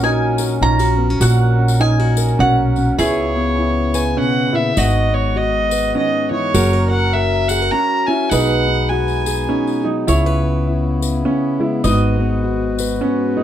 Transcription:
Already playing: upright bass A#1, steel-string acoustic guitar A#2 C#4, harmonium F#3 C#4 A#4
0.03 upright piano D#4, steel-string acoustic guitar F#4, mandolin G#5
0.38 steel-string acoustic guitar A#4, tambourine
0.61 upright bass A#1, upright piano C#4, steel-string acoustic guitar D#4, mandolin A#5
0.79 steel-string acoustic guitar F#4, tambourine
0.98 steel-string acoustic guitar B3
1.10 steel-string acoustic guitar C#4
1.20 upright bass A#1, steel-string acoustic guitar A#2, upright piano F#4, mandolin F#5, tambourine
1.59 steel-string acoustic guitar C#4
1.68 tambourine
1.80 upright piano D#4, steel-string acoustic guitar D#4, mandolin G#5
2.00 steel-string acoustic guitar F#4
2.17 steel-string acoustic guitar A#4, tambourine
2.28 tambourine
2.39 upright bass B1, upright piano C#4, steel-string acoustic guitar F#4, mandolin F#5
2.76 steel-string acoustic guitar C#4, tambourine
2.98 upright bass C#2, harmonium C#3 B3 E4, steel-string acoustic guitar C#3 B4, upright piano E4, mandolin G#4, fiddle C#5, tambourine
3.37 steel-string acoustic guitar B3
3.59 steel-string acoustic guitar E4
3.94 steel-string acoustic guitar B4, fiddle G#5, tambourine
4.17 steel-string acoustic guitar B2, upright piano C#4, fiddle F#5
4.53 steel-string acoustic guitar A#2, upright piano E4, fiddle E5
4.76 upright bass G#1, steel-string acoustic guitar G#2, harmonium G#3 F#4 B4, upright piano D#4, mandolin F#4, fiddle D#5, tambourine
5.13 steel-string acoustic guitar B3, fiddle C#5
5.36 steel-string acoustic guitar F#4, fiddle D#5
5.71 steel-string acoustic guitar B4, tambourine
5.95 steel-string acoustic guitar D#3, upright piano C#4, fiddle D#5
6.31 steel-string acoustic guitar E3, upright piano D#4, fiddle C#5
6.53 upright bass F#1, harmonium F#3 C#4 A#4, steel-string acoustic guitar F#3 G#4, upright piano F#4, mandolin A#4, tambourine
6.73 steel-string acoustic guitar A#4
6.90 steel-string acoustic guitar F#4, fiddle F#5
7.13 steel-string acoustic guitar A#4, fiddle E5
7.48 steel-string acoustic guitar G#4, fiddle F#5, tambourine
7.62 steel-string acoustic guitar A#4
7.71 upright piano C#4, steel-string acoustic guitar F#4, fiddle A#5
8.06 steel-string acoustic guitar C#4, upright piano E4, fiddle G#5
8.30 upright bass B1, steel-string acoustic guitar B2 G#4, harmonium G#3 B3 D#4, upright piano D#4, mandolin B4, fiddle F#5, tambourine
8.68 steel-string acoustic guitar D#4
8.89 steel-string acoustic guitar F#4, fiddle G#5
9.08 tambourine
9.26 steel-string acoustic guitar G#4, tambourine
9.49 upright piano C#4, steel-string acoustic guitar D#4
9.67 tambourine
9.84 steel-string acoustic guitar F#3, upright piano D#4
10.07 upright bass C#2, steel-string acoustic guitar C#3 G#4, harmonium C#3 E4, upright piano E4, mandolin C#5, tambourine
10.26 steel-string acoustic guitar B4
10.43 steel-string acoustic guitar B3
10.67 steel-string acoustic guitar E4
11.02 steel-string acoustic guitar B4, tambourine
11.25 steel-string acoustic guitar B3, upright piano C#4
11.60 steel-string acoustic guitar G#3, upright piano E4
11.84 upright bass G#1, steel-string acoustic guitar G#2 B4, harmonium G#3 F#4 B4, upright piano D#4, mandolin D#5, tambourine
12.20 steel-string acoustic guitar B3
12.44 steel-string acoustic guitar F#4
12.79 steel-string acoustic guitar B4, tambourine
13.01 steel-string acoustic guitar B3, upright piano C#4
13.37 steel-string acoustic guitar G#3, upright piano D#4

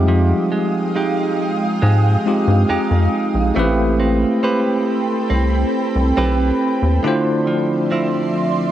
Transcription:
Already playing: analog synth bass F2, clean electric guitar G3, tine electric piano G#3 C4 D#4 F4 G4, ambient pad G#3 F5 G5 D#6
0.08 clean electric guitar F3
0.52 clean electric guitar G#3
0.95 clean electric guitar G#3 D#4 G4
1.82 analog synth bass G#2, clean electric guitar G#3
2.26 tine electric piano G#3 C4 D#4 F4 G4
2.48 analog synth bass G2
2.69 analog synth bass F2, clean electric guitar G#3 D#4 G4
2.91 analog synth bass F2
3.34 analog synth bass A#1
3.55 analog synth bass A1, tine electric piano A3 C4 E4 G4, clean electric guitar A3, ambient pad C4 A4 G5 B5
3.59 tine electric piano B4
4.00 clean electric guitar C4
4.43 clean electric guitar C4 G4 B4
5.30 analog synth bass C2, clean electric guitar C4
5.96 analog synth bass C2
6.17 analog synth bass B1, clean electric guitar C4 G4 B4
6.82 analog synth bass D#2
7.03 clean electric guitar D3, ambient pad F3 D5 E5 C6, tine electric piano A3 D4 E4 F4
7.08 tine electric piano C5
7.47 clean electric guitar F3
7.91 clean electric guitar F3 C4 E4

